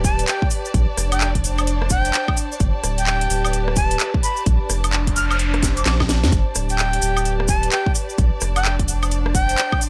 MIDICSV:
0, 0, Header, 1, 7, 480
1, 0, Start_track
1, 0, Tempo, 465116
1, 766, Time_signature, 4, 2, 24, 8
1, 10209, End_track
2, 0, Start_track
2, 0, Title_t, "Flute"
2, 0, Program_c, 0, 73
2, 46, Note_on_c, 0, 81, 93
2, 254, Note_off_c, 0, 81, 0
2, 287, Note_on_c, 0, 79, 94
2, 494, Note_off_c, 0, 79, 0
2, 1156, Note_on_c, 0, 79, 92
2, 1342, Note_off_c, 0, 79, 0
2, 1968, Note_on_c, 0, 79, 97
2, 2447, Note_off_c, 0, 79, 0
2, 3077, Note_on_c, 0, 79, 101
2, 3736, Note_off_c, 0, 79, 0
2, 3887, Note_on_c, 0, 81, 97
2, 4094, Note_off_c, 0, 81, 0
2, 4367, Note_on_c, 0, 83, 95
2, 4574, Note_off_c, 0, 83, 0
2, 5327, Note_on_c, 0, 89, 87
2, 5422, Note_off_c, 0, 89, 0
2, 5476, Note_on_c, 0, 89, 77
2, 5533, Note_off_c, 0, 89, 0
2, 5955, Note_on_c, 0, 86, 87
2, 6013, Note_off_c, 0, 86, 0
2, 6046, Note_on_c, 0, 86, 76
2, 6142, Note_off_c, 0, 86, 0
2, 6915, Note_on_c, 0, 79, 96
2, 7576, Note_off_c, 0, 79, 0
2, 7725, Note_on_c, 0, 81, 94
2, 7934, Note_off_c, 0, 81, 0
2, 7966, Note_on_c, 0, 79, 92
2, 8174, Note_off_c, 0, 79, 0
2, 8836, Note_on_c, 0, 79, 96
2, 9022, Note_off_c, 0, 79, 0
2, 9646, Note_on_c, 0, 79, 98
2, 10126, Note_off_c, 0, 79, 0
2, 10209, End_track
3, 0, Start_track
3, 0, Title_t, "Violin section"
3, 0, Program_c, 1, 48
3, 0, Note_on_c, 1, 74, 85
3, 6513, Note_off_c, 1, 74, 0
3, 6526, Note_on_c, 1, 74, 85
3, 10209, Note_off_c, 1, 74, 0
3, 10209, End_track
4, 0, Start_track
4, 0, Title_t, "Analog synth pad"
4, 0, Program_c, 2, 89
4, 0, Note_on_c, 2, 67, 88
4, 0, Note_on_c, 2, 71, 80
4, 0, Note_on_c, 2, 81, 79
4, 765, Note_on_c, 2, 62, 81
4, 766, Note_off_c, 2, 67, 0
4, 766, Note_off_c, 2, 71, 0
4, 1013, Note_on_c, 2, 72, 87
4, 2686, Note_off_c, 2, 72, 0
4, 2687, Note_on_c, 2, 67, 73
4, 3102, Note_on_c, 2, 71, 88
4, 3465, Note_off_c, 2, 62, 0
4, 4605, Note_on_c, 2, 62, 93
4, 4607, Note_off_c, 2, 67, 0
4, 4607, Note_off_c, 2, 71, 0
4, 5064, Note_on_c, 2, 72, 86
4, 6527, Note_off_c, 2, 72, 0
4, 6527, Note_on_c, 2, 67, 94
4, 7145, Note_on_c, 2, 71, 86
4, 7305, Note_off_c, 2, 62, 0
4, 8445, Note_on_c, 2, 62, 74
4, 8446, Note_off_c, 2, 67, 0
4, 8447, Note_off_c, 2, 71, 0
4, 9017, Note_on_c, 2, 72, 74
4, 10209, Note_off_c, 2, 62, 0
4, 10209, Note_off_c, 2, 72, 0
4, 10209, Note_off_c, 2, 81, 0
4, 10209, End_track
5, 0, Start_track
5, 0, Title_t, "Sub bass"
5, 0, Program_c, 3, 38
5, 0, Note_on_c, 3, 26, 101
5, 263, Note_off_c, 3, 26, 0
5, 766, Note_on_c, 3, 34, 104
5, 892, Note_off_c, 3, 34, 0
5, 1005, Note_on_c, 3, 29, 84
5, 1463, Note_off_c, 3, 29, 0
5, 1485, Note_on_c, 3, 29, 100
5, 2183, Note_off_c, 3, 29, 0
5, 2686, Note_on_c, 3, 31, 102
5, 2812, Note_off_c, 3, 31, 0
5, 2926, Note_on_c, 3, 26, 81
5, 3383, Note_off_c, 3, 26, 0
5, 3406, Note_on_c, 3, 26, 100
5, 4103, Note_off_c, 3, 26, 0
5, 4607, Note_on_c, 3, 34, 105
5, 4732, Note_off_c, 3, 34, 0
5, 4847, Note_on_c, 3, 29, 81
5, 5304, Note_off_c, 3, 29, 0
5, 5326, Note_on_c, 3, 29, 100
5, 6023, Note_off_c, 3, 29, 0
5, 6047, Note_on_c, 3, 34, 80
5, 6435, Note_on_c, 3, 41, 82
5, 6451, Note_off_c, 3, 34, 0
5, 6511, Note_off_c, 3, 41, 0
5, 6526, Note_on_c, 3, 31, 100
5, 6652, Note_off_c, 3, 31, 0
5, 6767, Note_on_c, 3, 26, 82
5, 7224, Note_off_c, 3, 26, 0
5, 7246, Note_on_c, 3, 26, 101
5, 7943, Note_off_c, 3, 26, 0
5, 8445, Note_on_c, 3, 34, 101
5, 8572, Note_off_c, 3, 34, 0
5, 8686, Note_on_c, 3, 29, 82
5, 9143, Note_off_c, 3, 29, 0
5, 9166, Note_on_c, 3, 29, 102
5, 9863, Note_off_c, 3, 29, 0
5, 10209, End_track
6, 0, Start_track
6, 0, Title_t, "Noise sweep"
6, 0, Program_c, 4, 103
6, 4607, Note_on_c, 4, 60, 62
6, 6526, Note_off_c, 4, 60, 0
6, 10209, End_track
7, 0, Start_track
7, 0, Title_t, "Drums"
7, 45, Note_on_c, 9, 69, 92
7, 46, Note_on_c, 9, 36, 104
7, 46, Note_on_c, 9, 46, 102
7, 148, Note_off_c, 9, 69, 0
7, 149, Note_off_c, 9, 36, 0
7, 149, Note_off_c, 9, 46, 0
7, 196, Note_on_c, 9, 42, 67
7, 200, Note_on_c, 9, 69, 54
7, 287, Note_off_c, 9, 42, 0
7, 287, Note_on_c, 9, 39, 117
7, 287, Note_on_c, 9, 42, 65
7, 293, Note_off_c, 9, 69, 0
7, 293, Note_on_c, 9, 69, 40
7, 390, Note_off_c, 9, 39, 0
7, 390, Note_off_c, 9, 42, 0
7, 396, Note_off_c, 9, 69, 0
7, 435, Note_on_c, 9, 36, 105
7, 520, Note_on_c, 9, 69, 83
7, 527, Note_on_c, 9, 46, 90
7, 539, Note_off_c, 9, 36, 0
7, 623, Note_off_c, 9, 69, 0
7, 630, Note_off_c, 9, 46, 0
7, 674, Note_on_c, 9, 69, 58
7, 766, Note_on_c, 9, 36, 114
7, 766, Note_on_c, 9, 42, 69
7, 771, Note_off_c, 9, 69, 0
7, 771, Note_on_c, 9, 69, 36
7, 869, Note_off_c, 9, 36, 0
7, 869, Note_off_c, 9, 42, 0
7, 875, Note_off_c, 9, 69, 0
7, 1006, Note_on_c, 9, 37, 54
7, 1006, Note_on_c, 9, 46, 108
7, 1011, Note_on_c, 9, 69, 93
7, 1109, Note_off_c, 9, 37, 0
7, 1109, Note_off_c, 9, 46, 0
7, 1114, Note_off_c, 9, 69, 0
7, 1156, Note_on_c, 9, 42, 68
7, 1156, Note_on_c, 9, 76, 65
7, 1157, Note_on_c, 9, 69, 51
7, 1246, Note_on_c, 9, 39, 116
7, 1248, Note_off_c, 9, 69, 0
7, 1248, Note_on_c, 9, 69, 41
7, 1259, Note_off_c, 9, 42, 0
7, 1259, Note_off_c, 9, 76, 0
7, 1349, Note_off_c, 9, 39, 0
7, 1351, Note_off_c, 9, 69, 0
7, 1395, Note_on_c, 9, 42, 68
7, 1396, Note_on_c, 9, 36, 61
7, 1486, Note_on_c, 9, 46, 94
7, 1491, Note_on_c, 9, 69, 92
7, 1499, Note_off_c, 9, 36, 0
7, 1499, Note_off_c, 9, 42, 0
7, 1589, Note_off_c, 9, 46, 0
7, 1594, Note_off_c, 9, 69, 0
7, 1632, Note_on_c, 9, 69, 47
7, 1636, Note_on_c, 9, 76, 63
7, 1726, Note_on_c, 9, 42, 69
7, 1729, Note_off_c, 9, 69, 0
7, 1729, Note_on_c, 9, 69, 35
7, 1739, Note_off_c, 9, 76, 0
7, 1829, Note_off_c, 9, 42, 0
7, 1832, Note_off_c, 9, 69, 0
7, 1875, Note_on_c, 9, 37, 65
7, 1957, Note_on_c, 9, 69, 86
7, 1965, Note_on_c, 9, 46, 108
7, 1966, Note_on_c, 9, 36, 102
7, 1979, Note_off_c, 9, 37, 0
7, 2061, Note_off_c, 9, 69, 0
7, 2069, Note_off_c, 9, 36, 0
7, 2069, Note_off_c, 9, 46, 0
7, 2115, Note_on_c, 9, 42, 71
7, 2119, Note_on_c, 9, 69, 54
7, 2204, Note_off_c, 9, 69, 0
7, 2204, Note_on_c, 9, 69, 43
7, 2206, Note_off_c, 9, 42, 0
7, 2206, Note_on_c, 9, 39, 115
7, 2206, Note_on_c, 9, 42, 67
7, 2307, Note_off_c, 9, 69, 0
7, 2309, Note_off_c, 9, 39, 0
7, 2309, Note_off_c, 9, 42, 0
7, 2355, Note_on_c, 9, 76, 66
7, 2356, Note_on_c, 9, 36, 100
7, 2446, Note_on_c, 9, 46, 90
7, 2446, Note_on_c, 9, 69, 85
7, 2459, Note_off_c, 9, 36, 0
7, 2459, Note_off_c, 9, 76, 0
7, 2549, Note_off_c, 9, 46, 0
7, 2549, Note_off_c, 9, 69, 0
7, 2601, Note_on_c, 9, 69, 52
7, 2682, Note_off_c, 9, 69, 0
7, 2682, Note_on_c, 9, 69, 41
7, 2686, Note_on_c, 9, 36, 115
7, 2686, Note_on_c, 9, 42, 71
7, 2786, Note_off_c, 9, 69, 0
7, 2789, Note_off_c, 9, 36, 0
7, 2789, Note_off_c, 9, 42, 0
7, 2926, Note_on_c, 9, 37, 55
7, 2926, Note_on_c, 9, 46, 113
7, 2930, Note_on_c, 9, 69, 86
7, 3029, Note_off_c, 9, 37, 0
7, 3029, Note_off_c, 9, 46, 0
7, 3034, Note_off_c, 9, 69, 0
7, 3076, Note_on_c, 9, 42, 70
7, 3079, Note_on_c, 9, 69, 47
7, 3166, Note_on_c, 9, 39, 113
7, 3168, Note_off_c, 9, 69, 0
7, 3168, Note_on_c, 9, 69, 37
7, 3179, Note_off_c, 9, 42, 0
7, 3269, Note_off_c, 9, 39, 0
7, 3272, Note_off_c, 9, 69, 0
7, 3316, Note_on_c, 9, 42, 71
7, 3407, Note_on_c, 9, 46, 100
7, 3408, Note_on_c, 9, 69, 84
7, 3419, Note_off_c, 9, 42, 0
7, 3510, Note_off_c, 9, 46, 0
7, 3512, Note_off_c, 9, 69, 0
7, 3556, Note_on_c, 9, 76, 64
7, 3561, Note_on_c, 9, 69, 48
7, 3646, Note_on_c, 9, 42, 71
7, 3651, Note_off_c, 9, 69, 0
7, 3651, Note_on_c, 9, 69, 38
7, 3659, Note_off_c, 9, 76, 0
7, 3750, Note_off_c, 9, 42, 0
7, 3754, Note_off_c, 9, 69, 0
7, 3796, Note_on_c, 9, 37, 66
7, 3881, Note_on_c, 9, 69, 84
7, 3886, Note_on_c, 9, 46, 110
7, 3887, Note_on_c, 9, 36, 100
7, 3899, Note_off_c, 9, 37, 0
7, 3984, Note_off_c, 9, 69, 0
7, 3989, Note_off_c, 9, 46, 0
7, 3990, Note_off_c, 9, 36, 0
7, 4031, Note_on_c, 9, 69, 50
7, 4036, Note_on_c, 9, 42, 73
7, 4126, Note_off_c, 9, 42, 0
7, 4126, Note_on_c, 9, 39, 115
7, 4126, Note_on_c, 9, 42, 69
7, 4133, Note_off_c, 9, 69, 0
7, 4133, Note_on_c, 9, 69, 37
7, 4229, Note_off_c, 9, 39, 0
7, 4229, Note_off_c, 9, 42, 0
7, 4236, Note_off_c, 9, 69, 0
7, 4276, Note_on_c, 9, 36, 101
7, 4366, Note_on_c, 9, 46, 95
7, 4372, Note_on_c, 9, 69, 84
7, 4379, Note_off_c, 9, 36, 0
7, 4469, Note_off_c, 9, 46, 0
7, 4475, Note_off_c, 9, 69, 0
7, 4506, Note_on_c, 9, 69, 54
7, 4606, Note_off_c, 9, 69, 0
7, 4606, Note_on_c, 9, 42, 67
7, 4606, Note_on_c, 9, 69, 39
7, 4607, Note_on_c, 9, 36, 119
7, 4709, Note_off_c, 9, 42, 0
7, 4709, Note_off_c, 9, 69, 0
7, 4710, Note_off_c, 9, 36, 0
7, 4846, Note_on_c, 9, 37, 57
7, 4846, Note_on_c, 9, 46, 111
7, 4846, Note_on_c, 9, 69, 92
7, 4949, Note_off_c, 9, 37, 0
7, 4949, Note_off_c, 9, 46, 0
7, 4950, Note_off_c, 9, 69, 0
7, 4996, Note_on_c, 9, 42, 70
7, 4996, Note_on_c, 9, 76, 61
7, 4998, Note_on_c, 9, 69, 54
7, 5086, Note_off_c, 9, 69, 0
7, 5086, Note_on_c, 9, 39, 114
7, 5086, Note_on_c, 9, 69, 37
7, 5099, Note_off_c, 9, 42, 0
7, 5099, Note_off_c, 9, 76, 0
7, 5189, Note_off_c, 9, 39, 0
7, 5189, Note_off_c, 9, 69, 0
7, 5235, Note_on_c, 9, 42, 68
7, 5236, Note_on_c, 9, 36, 62
7, 5326, Note_on_c, 9, 46, 101
7, 5327, Note_on_c, 9, 69, 89
7, 5339, Note_off_c, 9, 36, 0
7, 5339, Note_off_c, 9, 42, 0
7, 5429, Note_off_c, 9, 46, 0
7, 5430, Note_off_c, 9, 69, 0
7, 5476, Note_on_c, 9, 76, 61
7, 5479, Note_on_c, 9, 69, 49
7, 5564, Note_off_c, 9, 69, 0
7, 5564, Note_on_c, 9, 69, 38
7, 5566, Note_on_c, 9, 42, 71
7, 5579, Note_off_c, 9, 76, 0
7, 5667, Note_off_c, 9, 69, 0
7, 5669, Note_off_c, 9, 42, 0
7, 5716, Note_on_c, 9, 37, 71
7, 5716, Note_on_c, 9, 42, 39
7, 5805, Note_on_c, 9, 38, 63
7, 5805, Note_on_c, 9, 46, 113
7, 5806, Note_on_c, 9, 36, 103
7, 5816, Note_on_c, 9, 69, 89
7, 5819, Note_off_c, 9, 37, 0
7, 5819, Note_off_c, 9, 42, 0
7, 5909, Note_off_c, 9, 36, 0
7, 5909, Note_off_c, 9, 38, 0
7, 5909, Note_off_c, 9, 46, 0
7, 5920, Note_off_c, 9, 69, 0
7, 5954, Note_on_c, 9, 69, 55
7, 5955, Note_on_c, 9, 42, 69
7, 6044, Note_off_c, 9, 69, 0
7, 6044, Note_on_c, 9, 69, 39
7, 6045, Note_off_c, 9, 42, 0
7, 6045, Note_on_c, 9, 38, 75
7, 6045, Note_on_c, 9, 39, 116
7, 6045, Note_on_c, 9, 42, 69
7, 6147, Note_off_c, 9, 69, 0
7, 6148, Note_off_c, 9, 38, 0
7, 6148, Note_off_c, 9, 39, 0
7, 6148, Note_off_c, 9, 42, 0
7, 6195, Note_on_c, 9, 38, 75
7, 6195, Note_on_c, 9, 76, 62
7, 6196, Note_on_c, 9, 36, 101
7, 6285, Note_off_c, 9, 38, 0
7, 6285, Note_on_c, 9, 38, 91
7, 6285, Note_on_c, 9, 46, 99
7, 6287, Note_on_c, 9, 69, 93
7, 6298, Note_off_c, 9, 76, 0
7, 6299, Note_off_c, 9, 36, 0
7, 6388, Note_off_c, 9, 38, 0
7, 6388, Note_off_c, 9, 46, 0
7, 6391, Note_off_c, 9, 69, 0
7, 6435, Note_on_c, 9, 38, 90
7, 6436, Note_on_c, 9, 69, 51
7, 6526, Note_on_c, 9, 36, 123
7, 6526, Note_on_c, 9, 42, 66
7, 6530, Note_off_c, 9, 69, 0
7, 6530, Note_on_c, 9, 69, 41
7, 6538, Note_off_c, 9, 38, 0
7, 6629, Note_off_c, 9, 36, 0
7, 6629, Note_off_c, 9, 42, 0
7, 6633, Note_off_c, 9, 69, 0
7, 6760, Note_on_c, 9, 69, 93
7, 6766, Note_on_c, 9, 37, 59
7, 6766, Note_on_c, 9, 46, 115
7, 6863, Note_off_c, 9, 69, 0
7, 6869, Note_off_c, 9, 37, 0
7, 6869, Note_off_c, 9, 46, 0
7, 6907, Note_on_c, 9, 69, 50
7, 6915, Note_on_c, 9, 42, 66
7, 7005, Note_off_c, 9, 69, 0
7, 7005, Note_on_c, 9, 39, 120
7, 7005, Note_on_c, 9, 69, 44
7, 7018, Note_off_c, 9, 42, 0
7, 7108, Note_off_c, 9, 39, 0
7, 7108, Note_off_c, 9, 69, 0
7, 7155, Note_on_c, 9, 42, 68
7, 7243, Note_on_c, 9, 69, 89
7, 7245, Note_on_c, 9, 46, 100
7, 7258, Note_off_c, 9, 42, 0
7, 7346, Note_off_c, 9, 69, 0
7, 7349, Note_off_c, 9, 46, 0
7, 7396, Note_on_c, 9, 76, 58
7, 7399, Note_on_c, 9, 69, 57
7, 7486, Note_on_c, 9, 42, 67
7, 7488, Note_off_c, 9, 69, 0
7, 7488, Note_on_c, 9, 69, 42
7, 7499, Note_off_c, 9, 76, 0
7, 7589, Note_off_c, 9, 42, 0
7, 7591, Note_off_c, 9, 69, 0
7, 7636, Note_on_c, 9, 37, 73
7, 7719, Note_on_c, 9, 69, 96
7, 7725, Note_on_c, 9, 46, 112
7, 7726, Note_on_c, 9, 36, 105
7, 7739, Note_off_c, 9, 37, 0
7, 7822, Note_off_c, 9, 69, 0
7, 7829, Note_off_c, 9, 36, 0
7, 7829, Note_off_c, 9, 46, 0
7, 7874, Note_on_c, 9, 69, 49
7, 7876, Note_on_c, 9, 42, 67
7, 7964, Note_off_c, 9, 69, 0
7, 7964, Note_on_c, 9, 69, 41
7, 7966, Note_off_c, 9, 42, 0
7, 7966, Note_on_c, 9, 39, 119
7, 7966, Note_on_c, 9, 42, 64
7, 8067, Note_off_c, 9, 69, 0
7, 8069, Note_off_c, 9, 39, 0
7, 8069, Note_off_c, 9, 42, 0
7, 8116, Note_on_c, 9, 36, 104
7, 8202, Note_on_c, 9, 69, 87
7, 8206, Note_on_c, 9, 46, 95
7, 8219, Note_off_c, 9, 36, 0
7, 8305, Note_off_c, 9, 69, 0
7, 8309, Note_off_c, 9, 46, 0
7, 8353, Note_on_c, 9, 69, 50
7, 8443, Note_off_c, 9, 69, 0
7, 8443, Note_on_c, 9, 69, 40
7, 8446, Note_on_c, 9, 36, 127
7, 8446, Note_on_c, 9, 42, 64
7, 8546, Note_off_c, 9, 69, 0
7, 8549, Note_off_c, 9, 36, 0
7, 8549, Note_off_c, 9, 42, 0
7, 8676, Note_on_c, 9, 69, 91
7, 8686, Note_on_c, 9, 37, 59
7, 8686, Note_on_c, 9, 46, 108
7, 8780, Note_off_c, 9, 69, 0
7, 8789, Note_off_c, 9, 37, 0
7, 8789, Note_off_c, 9, 46, 0
7, 8836, Note_on_c, 9, 42, 65
7, 8836, Note_on_c, 9, 76, 59
7, 8841, Note_on_c, 9, 69, 51
7, 8926, Note_off_c, 9, 69, 0
7, 8926, Note_on_c, 9, 39, 127
7, 8926, Note_on_c, 9, 69, 44
7, 8939, Note_off_c, 9, 42, 0
7, 8939, Note_off_c, 9, 76, 0
7, 9029, Note_off_c, 9, 39, 0
7, 9029, Note_off_c, 9, 69, 0
7, 9076, Note_on_c, 9, 36, 67
7, 9076, Note_on_c, 9, 42, 63
7, 9166, Note_on_c, 9, 46, 97
7, 9166, Note_on_c, 9, 69, 103
7, 9179, Note_off_c, 9, 36, 0
7, 9179, Note_off_c, 9, 42, 0
7, 9269, Note_off_c, 9, 46, 0
7, 9270, Note_off_c, 9, 69, 0
7, 9316, Note_on_c, 9, 69, 51
7, 9316, Note_on_c, 9, 76, 59
7, 9405, Note_off_c, 9, 69, 0
7, 9405, Note_on_c, 9, 69, 41
7, 9406, Note_on_c, 9, 42, 64
7, 9419, Note_off_c, 9, 76, 0
7, 9508, Note_off_c, 9, 69, 0
7, 9509, Note_off_c, 9, 42, 0
7, 9555, Note_on_c, 9, 37, 73
7, 9645, Note_on_c, 9, 46, 112
7, 9646, Note_on_c, 9, 36, 110
7, 9651, Note_on_c, 9, 69, 96
7, 9658, Note_off_c, 9, 37, 0
7, 9748, Note_off_c, 9, 46, 0
7, 9749, Note_off_c, 9, 36, 0
7, 9754, Note_off_c, 9, 69, 0
7, 9795, Note_on_c, 9, 42, 64
7, 9798, Note_on_c, 9, 69, 54
7, 9881, Note_off_c, 9, 69, 0
7, 9881, Note_on_c, 9, 69, 46
7, 9886, Note_off_c, 9, 42, 0
7, 9886, Note_on_c, 9, 39, 123
7, 9886, Note_on_c, 9, 42, 63
7, 9984, Note_off_c, 9, 69, 0
7, 9989, Note_off_c, 9, 39, 0
7, 9989, Note_off_c, 9, 42, 0
7, 10035, Note_on_c, 9, 36, 108
7, 10035, Note_on_c, 9, 76, 61
7, 10125, Note_on_c, 9, 46, 92
7, 10130, Note_on_c, 9, 69, 103
7, 10138, Note_off_c, 9, 76, 0
7, 10139, Note_off_c, 9, 36, 0
7, 10209, Note_off_c, 9, 46, 0
7, 10209, Note_off_c, 9, 69, 0
7, 10209, End_track
0, 0, End_of_file